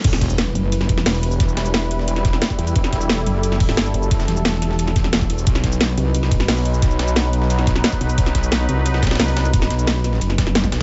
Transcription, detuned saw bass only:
\new Staff \with { instrumentName = "Detuned saw bass" } { \clef bass \time 4/4 \key e \minor \tempo 4 = 177 e,,4. r4. e,,4~ | e,,2. r4 | e,,4. r2 fis,,8~ | fis,,8 r2. e,,8 |
b,,4. r4. b,,4~ | b,,2. r4 | b,,4. r2 r8 | r1 | }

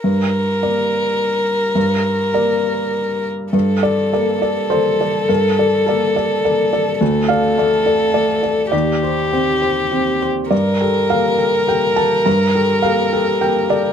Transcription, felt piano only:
\new Staff \with { instrumentName = "Felt piano" } { \time 3/4 \key g \minor \tempo 4 = 104 << { r2. | r2. | r8 d''4. c''4 | bes'4 a'4. r8 |
r8 f''4. d''4 | d''4 c''4 r4 | d''4 f''4 g''8 a''8 | bes''4 f''4 g''8 d''8 | } \\ { g,4 <bes bes' d''>2 | g,4 <bes bes' d''>2 | g,8 a'8 <bes a' d''>8 <a' d''>8 <bes a' d''>8 <a' d''>8 | g,8 <a' d''>8 <bes d''>8 <a' d''>8 <bes a' d''>8 <a' d''>8 |
d,8 <a' d''>8 <a a' d''>8 <a' d''>8 <a a'>8 <a' d''>8 | ees,8 <g' c''>8 <c' g'>8 <g' c''>8 <c' g' c''>8 <g' c''>8 | g,8 <g' a'>8 <bes g' a'>8 <g' a'>8 <bes g' a'>8 <g' a'>8 | g,8 <g' a'>8 <bes g' a'>8 <g' a'>8 <bes g' a'>8 <g' a'>8 | } >> }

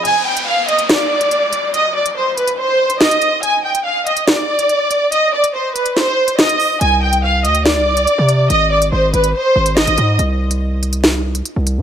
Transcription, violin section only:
\new Staff \with { instrumentName = "Violin section" } { \time 4/4 \key aes \lydian \tempo 4 = 142 aes''8 g''8 f''8 ees''8 d''2 | ees''8 d''8 c''8 b'8 c''4 ees''4 | aes''8 g''8 f''8 ees''8 d''2 | ees''8 d''8 c''8 b'8 c''4 ees''4 |
aes''8 g''8 f''8 ees''8 d''2 | ees''8 d''8 c''8 b'8 c''4 ees''4 | r1 | }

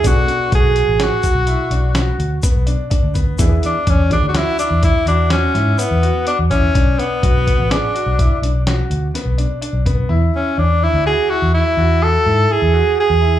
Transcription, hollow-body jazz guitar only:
\new Staff \with { instrumentName = "Hollow-body jazz guitar" } { \time 7/4 \key b \dorian \tempo 4 = 125 <b, b d' a'>4. r1 r4. | <e b d' gis'>8 r4 <e b d' gis'>8 r1 r4 | r1. r4 | r1. r4 | }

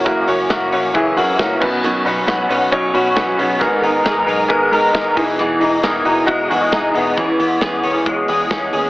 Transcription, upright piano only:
\new Staff \with { instrumentName = "Upright piano" } { \time 4/4 \key e \lydian \tempo 4 = 135 <e' fis' ais'>8 <e' fis' cis''>8 <e' fis' ais'>8 <e' fis' cis''>8 <e' fis' gis'>8 <e' fis' ais'>8 <e' fis' ais'>8 <cis' dis' b'>8~ | <cis' dis' b'>8 <cis' dis' b'>8 <cis' dis' b'>8 <cis' dis' b'>8 <cis' dis' cis''>8 <cis' dis' b'>8 <cis' dis' b'>8 <cis' dis' gis'>8 | <b gis' ais'>8 <b gis' ais'>8 <b gis' ais'>8 <b gis' ais'>8 <b gis' ais'>8 <b gis' ais'>8 <b gis' ais'>8 <dis' e' gis'>8~ | <dis' e' gis'>8 <dis' e' gis'>8 <dis' e' ais'>8 <dis' e' fis'>8 <dis' e' fis'>8 <dis' e' gis'>8 <dis' e' gis'>8 <dis' e' gis'>8 |
r1 | }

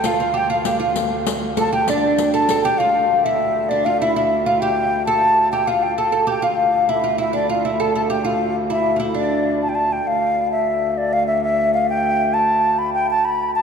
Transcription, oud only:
\new Staff \with { instrumentName = "Oud" } { \time 6/8 \key d \minor \tempo 4. = 132 f'8 f'8 g'8 f'8 g'8 f'8 | r2 a'8 g'8 | d'4. a'8 a'8 g'8 | f'4. e'4. |
d'8 f'8 e'8 e'4 f'8 | g'4. a'4. | g'8 f'4 a'8 a'8 g'8 | f'4. e'8 f'8 e'8 |
d'8 f'8 e'8 a'8 a'8 g'8 | f'4 r8 e'8.~ e'32 f'32 e'8 | d'2 r4 | r2. |
r2. | r2. | r2. | }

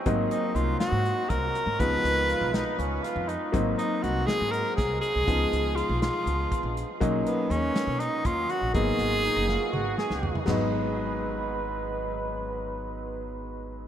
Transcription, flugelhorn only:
\new Staff \with { instrumentName = "Flugelhorn" } { \time 7/8 \key gis \dorian \tempo 4 = 121 bis16 r2. r16 | r4 eis'8 dis'8 cis'8 eis'8 dis'8~ | dis'16 r2. r16 | r2. r8 |
r2. r8 | r4 dis'8 eis'8 fis'8 gis'4 | b'2.~ b'8~ | b'2.~ b'8 | }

